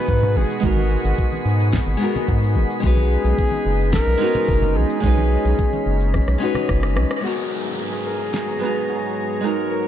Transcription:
Already playing: B2 G#3 B3 D#4 F#4 G#4 B4 B6
0.08 G#2, kick, shaker
0.23 low conga, shaker
0.36 G#1 G#4, high conga
0.50 shaker
0.60 G#1 G#3 B3 D#4, kick, shaker
0.64 F#4 A#4
0.77 high conga, shaker
1.05 G#1, shaker
1.18 kick, shaker
1.32 high conga, shaker
1.45 G#2
1.60 shaker
1.73 kick, snare, high conga, shaker
1.87 G#1, shaker
1.97 G#3 B3 D#4
2.02 F#4 A#4
2.15 high conga, low conga, shaker
2.28 G#2, kick, shaker
2.43 shaker
2.56 G#1, high conga
2.70 shaker
2.80 B1 G#3 B3 C#4 D#4, kick, shaker
2.84 F#4 G#4 B4
2.97 high conga, shaker
3.24 B1, shaker
3.38 kick, shaker
3.51 high conga, shaker
3.65 F#1
3.80 shaker
3.93 A#4, kick, snare, high conga, shaker
4.07 B1, shaker
4.18 G#3 C#4 D#4
4.22 B3 F#4
4.35 high conga, low conga, shaker
4.48 F#1, kick, shaker
4.62 low conga, shaker
4.76 B1 G#4, high conga
4.90 shaker
5.00 B1 G#3 C#4 D#4, kick, shaker
5.05 F#4 B4
5.18 high conga, shaker
5.45 B1, shaker
5.59 kick, shaker
5.73 high conga, shaker
5.86 F#1
6.00 shaker
6.14 kick, cross-stick, high conga, shaker
6.28 B1, cross-stick, shaker
6.38 G#3 C#4 D#4
6.43 F#4 B4
6.55 cross-stick, high conga, low conga, shaker
6.69 F#1, kick, cross-stick, shaker
6.83 cross-stick, shaker
6.96 B1, cross-stick, high conga
7.11 cross-stick, shaker
7.21 G#2 F#3 G#3 B3 D#4 F#4 C#5 A#5 C#6, downlifter
7.25 F#4 G#4 A#4
7.79 G#4
8.07 A#4
8.34 snare
8.59 G#3 B3 D#4 B4
8.63 F#4 A#5
8.89 F#4
9.41 G#3 B3 D#4 G#4
9.45 F#4 A#4 A#5
9.72 A#4

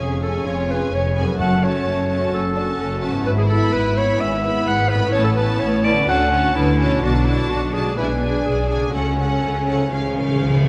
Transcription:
Already playing: F2 G#3 C#4 G#4 G#5
0.00 F1 F2 G#4
0.22 C#4 G#4 A4 G#5
0.45 F1 F2 F4 C#5
0.69 C#4 G#4 B4 G#5
0.92 F1 F2 C#4 C#5
1.15 B3 C#4 G#4 G#5
1.20 F#2
1.25 A3
1.29 C#4
1.34 F#4
1.39 F#1 F#2 A3 C#4 F#4 F#5 A5
1.62 C#4 F#4 C#5 A5
1.85 F#1 F#2
2.09 C#4 F#4 A5
2.32 F#1 F#2 C#4 A4
2.55 C#4 D4 F#4 A5
2.77 F#1 F#2 C#4 A4
3.01 A3 C#4 F#4 A5
3.07 G#2
3.12 B3
3.17 E4
3.25 G#1 G#2 E4 B4
3.38 G#4
3.48 B3 E4 A4 B5
3.73 G#1 G#2 B4
3.95 B3 E4 C#5 B5
4.18 G#1 G#2 C#4 E5
4.42 B3 E4 B5
4.66 G#1 G#2 F#5
4.89 B3 E4 B4 B5
4.95 A2
4.99 A3
5.04 C#4
5.08 E4 C#5
5.13 A1 A2 C#4 E4 A5
5.24 A4
5.35 C#4 E4 B4 A5
5.60 A1 A2 C#5
5.83 C#4 E4 D5 A5
5.90 D3
5.94 A3
5.98 C#4
6.03 D2 F#4 A5
6.07 D3 C#4 D4 F#4 F#5
6.31 C#4 F#4 A5
6.55 D2 D3 B3 E4
6.79 C#4 F#4 A5
6.85 B2
6.89 A3
6.94 D4
6.98 B1 F#4
7.03 B2 D4 F#4 A5
7.15 D4
7.25 D4 E4 F#4 A5
7.49 B1 B2 F#4
7.74 D4 F#4 G#4 A5
7.79 B2
7.84 G#3
7.89 D4
7.93 G#4
7.97 B1 B2 D4 E4 G#4 B4 G#5
8.21 D4 G#4 G#5
8.45 B1 B2 G#4
8.69 D4 G#4 G#5
8.75 C#3
8.80 A3
8.84 C#4
8.89 C#4 F#4
8.93 C#2 C#3 C#4 A4 F#5
9.19 C#4 A4 F#5
9.43 C#2 C#3
9.67 C#4 A4 F#5
9.73 C#3
9.78 G#3
9.82 C#4
9.87 F4
9.91 C#2 C#3 C#4 G#4 F5
10.00 C#3
10.14 C#3 C#4 G#4 F5
10.21 C#3
10.28 C#3
10.36 C#3
10.41 C#2 C#3
10.50 C#3
10.57 C#3
10.64 C#3 C#4 G#4

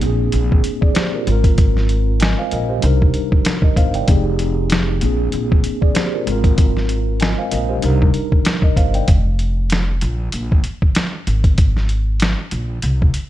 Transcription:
Already playing: A#2
0.00 A#1 A#3 C4 D4, closed hi-hat
0.06 G#4
0.32 A#1, closed hi-hat
0.52 kick
0.64 closed hi-hat
0.81 G#4 D5, kick
0.94 G4 C5, snare, closed hi-hat
1.15 F4 A#4
1.24 G#1 G#2 G#3, closed hi-hat
1.28 C4 F4
1.32 A#4
1.44 kick, closed hi-hat
1.58 kick, closed hi-hat
1.77 snare
1.89 closed hi-hat
2.20 D#5 G#5, snare, closed hi-hat
2.39 C5 F5
2.51 A#1 A#4 D#5, closed hi-hat
2.69 G4 C5
2.77 C3 G3
2.82 C2 D4 D#4, closed hi-hat
2.86 A#4
3.02 kick
3.14 closed hi-hat
3.32 kick
3.45 snare, closed hi-hat
3.62 A#4 D#5, kick
3.76 G1 C5 F5, kick, closed hi-hat
3.94 D5 G5, closed hi-hat
4.07 F1 F3 C4 D#4 G4, kick, closed hi-hat
4.11 G#4
4.39 closed hi-hat
4.70 snare, closed hi-hat
4.97 A#2 A#3, closed hi-hat
5.02 A#1 C4 D4
5.06 G#4
5.32 A#1, closed hi-hat
5.52 kick
5.64 closed hi-hat
5.81 G#4 D5, kick
5.94 G4 C5, snare, closed hi-hat
6.15 F4 A#4
6.23 G#1 G#2 G#3, closed hi-hat
6.28 C4 F4
6.32 A#4
6.44 kick, closed hi-hat
6.58 kick, closed hi-hat
6.77 snare
6.89 closed hi-hat
7.20 D#5 G#5, snare, closed hi-hat
7.38 C5 F5
7.51 A#1 A#4 D#5, closed hi-hat
7.69 G4 C5
7.77 C3 G3
7.81 C2 D4 D#4, closed hi-hat
7.86 A#4
8.02 kick
8.14 closed hi-hat
8.32 kick
8.45 snare, closed hi-hat
8.62 A#4 D#5, kick
8.77 G1 C5 F5, kick, closed hi-hat
8.94 D5 G5, closed hi-hat
9.08 F1, kick, closed hi-hat
9.39 closed hi-hat
9.70 snare, closed hi-hat
10.01 A#1, closed hi-hat
10.32 A#1, closed hi-hat
10.52 kick
10.64 closed hi-hat
10.82 kick
10.95 snare, closed hi-hat
11.27 G#1, closed hi-hat
11.44 kick, closed hi-hat
11.58 kick, closed hi-hat
11.77 snare
11.89 closed hi-hat
12.20 snare, closed hi-hat
12.51 A#1, closed hi-hat
12.82 C2, closed hi-hat
13.02 kick
13.14 closed hi-hat

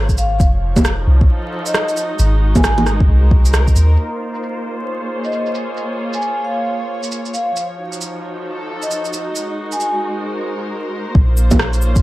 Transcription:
Already playing: G#1 A#3 F4 G#4 C5 C#5
0.09 kick, shaker
0.18 F5, shaker
0.40 F1 F3, kick, shaker
0.73 D#4, kick, low bongo, shaker
0.85 cross-stick, shaker
1.05 C2 F#4
1.18 A4, kick
1.66 D#5, shaker
1.74 cross-stick, shaker
1.88 shaker
1.97 shaker
2.19 G#1 G#3, shaker
2.56 G#5, kick, low bongo, shaker
2.64 cross-stick, shaker
2.78 A#4, low bongo
2.86 cross-stick, shaker
3.00 C5, kick
3.09 C2
3.31 kick
3.45 shaker
3.54 cross-stick, shaker
3.67 kick, shaker
3.76 D#2, shaker
3.98 A#3, shaker
4.03 F4
4.35 shaker
4.43 shaker
4.61 G#4
4.78 C#5
5.24 D#5, shaker
5.32 shaker
5.46 shaker
5.55 shaker
5.77 shaker
6.13 G#5, shaker
6.22 shaker
6.45 F5
7.03 shaker
7.12 shaker
7.26 shaker
7.34 F5, shaker
7.56 F3, shaker
7.77 D#4 F#4
7.93 shaker
8.01 shaker
8.39 A4
8.82 D#5, shaker
8.91 shaker
9.05 shaker
9.13 shaker
9.36 G#3, shaker
9.62 A#4
9.72 G#5, shaker
9.80 shaker
10.06 C5
11.15 A#1 A#3, kick
11.25 F4
11.37 cabasa
11.51 kick, low bongo, shaker
11.55 C#5
11.59 cross-stick
11.73 shaker
11.82 cabasa
11.96 G#4, kick, shaker

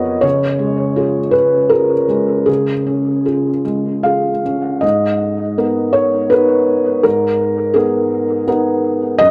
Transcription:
Already playing: F2 F3 B3 F4 G#4 A#4 B4 C#5 D#5
0.21 C#3 C#5
0.59 G#3
0.96 F4 G#4
1.31 C#4 B4
1.70 F4 G#4 A#4
2.08 G#3
2.46 C#3 G#4
2.87 C#4
3.26 F4 G#4
3.65 G#3
4.03 F4 G#4 F5
4.46 C#4
4.81 G#2 D#5
5.58 B3 D#4 A#4
5.93 C#5
6.30 B3 D#4 A#4 B4
7.03 G#2 A#4
7.74 B3 D#4 G#4 A#4
8.47 B3 D#4 A#4
9.18 F#2 D#5

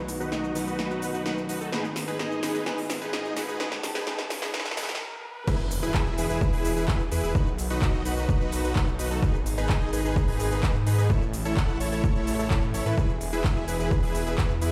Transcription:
Already playing: B1 B2 D#3 F#3 B3 D#4 F#4, riser
0.08 open hi-hat, shaker
0.20 B1 D#4 F#4 B4, shaker
0.32 B1 D#4 F#4 D#5, snare, shaker
0.44 shaker
0.54 B1 D#3 F#3 B3 D#4 F#4 B4, open hi-hat, shaker
0.67 B1 D#4 F#4 B4, shaker
0.79 B1 D#4 F#4 B4, snare, shaker
0.90 B1 D#4 F#4 B4, shaker
1.02 open hi-hat, shaker
1.14 B1 D#4 F#4 B4, shaker
1.26 B1 D#4 F#4 B4, snare, shaker
1.38 shaker
1.49 B1 D#4 F#4 B4, open hi-hat, shaker
1.61 B1 D#4 F#4 A4, shaker
1.71 G#1 G#2 D#3 G#3 B3 D#4 G#4 B4, snare, shaker
1.85 shaker
1.96 snare, open hi-hat, shaker
2.08 G#1 D#4 G#4 B4, shaker
2.19 G#1 D#4 G#4 D#5, snare, shaker
2.32 shaker
2.42 G#1 G#2 D#3 G#3 B3 D#4 G#4 B4, snare, open hi-hat, shaker
2.55 G#1 D#4 G#4 B4, shaker
2.65 G#1 G#2 D#3 G#3 B3 D#4 G#4 B4, snare, shaker
2.78 open hi-hat, shaker
2.90 snare, open hi-hat, shaker
3.01 G#1 D#4 G#4 B4, shaker
3.13 G#2 D#4 G#4 D#5, snare, shaker
3.25 shaker
3.35 G#1 G#2 D#3 G#3 B3 D#4 G#4 B4, snare, open hi-hat, shaker
3.48 G#2 D#4 G#4 B4, shaker
3.59 A1 G#2 C#3 D#3 G#3 B3 D#4 G#4 B4 A5, snare, shaker
3.72 snare, shaker
3.83 snare, open hi-hat, shaker
3.95 A1 D#4 G#4 B4, snare, shaker
4.06 A1 G#2 D#3 G#3 B3 D#4 G#4 B4, snare, shaker
4.19 snare, shaker
4.30 snare, open hi-hat, shaker
4.42 A1 D#4 G#4 B4, snare, shaker
4.53 A1 G#2 D#3 G#3 B3 D#4 G#4 B4, snare, shaker
4.60 snare
4.65 snare, shaker
4.71 snare
4.76 A1 G#2 D#3 G#3 B3 D#4 G#4 B4, snare, open hi-hat, shaker
4.83 snare
4.89 snare, shaker
4.95 snare
5.47 E1 B2 E3 G#3 E4 G#4 B4, kick, crash, impact, shaker
5.60 shaker
5.71 open hi-hat, shaker
5.83 E1 E4 G#4 B4, shaker
5.94 E1 E4 G#4 E5, kick, clap, shaker
6.07 shaker
6.18 E1 E4 G#4 B4, open hi-hat, shaker
6.30 E1 E4 G#4 B4, shaker
6.41 E1 E4 G#4 B4, kick, shaker
6.53 E1 E4 G#4 B4, open hi-hat, shaker
6.65 open hi-hat, shaker
6.76 E1 E4 G#4 B4, shaker
6.88 E1 E4 G#4 B4, kick, clap, shaker
7.00 shaker
7.12 E2 E4 G#4 B4, open hi-hat, shaker
7.23 E1 E4 G#4 B4, shaker
7.35 B1 B2 D#3 F#3 D#4 F#4 B4, kick, shaker
7.47 shaker
7.58 open hi-hat, shaker
7.70 B1 D#4 F#4 B4, shaker
7.82 B1 D#4 F#4 D#5, kick, clap, shaker
7.94 shaker
8.05 B1 D#4 F#4 B4, open hi-hat, shaker
8.17 B1 D#4 F#4 B4, shaker
8.29 B1 D#4 F#4 B4, kick, shaker
8.40 B1 D#4 F#4 B4, shaker
8.52 open hi-hat, shaker
8.64 B1 D#4 F#4 B4, shaker
8.76 B1 D#4 F#4 B4, kick, clap, shaker
8.88 shaker
8.99 B1 D#4 F#4 B4, open hi-hat, shaker
9.11 B1 D#4 F#4 A4, shaker
9.23 G#1 D#3 G#3 D#4 G#4 B4, kick, shaker
9.35 shaker
9.46 open hi-hat, shaker
9.58 G#1 D#4 G#4 B4, shaker
9.69 G#1 D#4 G#4 D#5, kick, clap, shaker
9.82 shaker
9.93 G#1 D#4 G#4 B4, open hi-hat, shaker
10.04 G#1 D#4 G#4 B4, shaker
10.16 G#1 D#4 G#4 B4, kick, shaker
10.28 G#1 D#4 G#4 B4, open hi-hat, shaker
10.40 open hi-hat, shaker
10.51 G#1 D#4 G#4 B4, shaker
10.63 G#2 D#4 G#4 B4, kick, clap, shaker
10.75 shaker
10.87 G#2 D#4 G#4 B4, open hi-hat, shaker
10.98 G#2 D#4 G#4 B4, shaker
11.10 A1 C#3 E3 A3 E4 A4 C#5, kick, shaker
11.22 shaker
11.33 open hi-hat, shaker
11.45 A1 E4 A4 C#5, shaker
11.57 A1 E4 A4 F#5, kick, clap, shaker
11.69 shaker
11.80 A1 E4 A4 C#5, open hi-hat, shaker
11.92 A1 E4 A4 C#5, shaker
12.04 A1 E4 A4 C#5, kick, shaker
12.15 A1 E4 A4 C#5, shaker
12.27 open hi-hat, shaker
12.39 A1 E4 A4 C#5, shaker
12.51 A2 E4 A4 C#5, kick, clap, shaker
12.63 shaker
12.74 A1 E4 A4 C#5, open hi-hat, shaker
12.86 A2 E4 A4 B4, shaker
12.97 E1 B2 G#3 E4 G#4 B4, kick, shaker
13.10 shaker
13.21 open hi-hat, shaker
13.33 E1 E4 G#4 B4, shaker
13.44 E1 E4 G#4 E5, kick, clap, shaker
13.56 shaker
13.68 E1 E4 G#4 B4, open hi-hat, shaker
13.80 E1 E4 G#4 B4, shaker
13.91 E1 E4 G#4 B4, kick, shaker
14.03 E1 E4 G#4 B4, open hi-hat, shaker
14.15 open hi-hat, shaker
14.26 E1 E4 G#4 B4, shaker
14.38 E2 E4 G#4 B4, kick, clap, shaker
14.50 shaker
14.62 E2 E4 G#4 B4, open hi-hat, shaker

